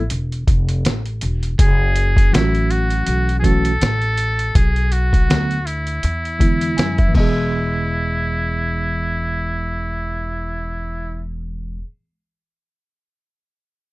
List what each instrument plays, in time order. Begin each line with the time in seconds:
Already playing: muted trumpet E4
0.10 upright bass E1, closed hi-hat
0.32 closed hi-hat
0.47 upright bass F1, kick, closed hi-hat
0.69 closed hi-hat
0.85 upright bass A1, snare, closed hi-hat
1.06 closed hi-hat
1.21 upright bass E1, closed hi-hat
1.43 closed hi-hat
1.59 upright bass F#1, muted trumpet G#4, kick, closed hi-hat
1.96 closed hi-hat
2.17 kick, closed hi-hat
2.31 upright bass A1, tine electric piano E3 F#3 A3 C#4 F4, muted trumpet E4, snare, closed hi-hat
2.41 tine electric piano F#4
2.55 closed hi-hat
2.71 muted trumpet F#4, closed hi-hat
2.90 closed hi-hat
3.06 upright bass B1, closed hi-hat
3.29 closed hi-hat
3.40 tine electric piano E3 F#3, muted trumpet G#4
3.44 tine electric piano A3 C#4 F#4, muted trumpet A4, kick, closed hi-hat
3.65 closed hi-hat
3.81 upright bass A1, snare, closed hi-hat
4.02 closed hi-hat
4.18 closed hi-hat
4.39 closed hi-hat
4.55 upright bass B1, muted trumpet G#4, kick, closed hi-hat
4.76 closed hi-hat
4.92 muted trumpet F#4, closed hi-hat
5.13 kick, closed hi-hat
5.28 upright bass D2, tine electric piano D3 F#3 A3 B3 F#4, snare, closed hi-hat
5.51 closed hi-hat
5.66 muted trumpet E4, closed hi-hat
5.87 closed hi-hat
6.03 upright bass E2, closed hi-hat
6.25 closed hi-hat
6.39 tine electric piano D3 E3 G#3 B3 E4, kick, closed hi-hat
6.61 closed hi-hat
6.77 upright bass F#2, tine electric piano G#5, snare, closed hi-hat
6.98 tine electric piano E5, kick, closed hi-hat
7.08 tine electric piano E3 G#3
7.14 upright bass E1, tine electric piano B3 D#5, muted trumpet E4, kick, crash
7.20 tine electric piano G#4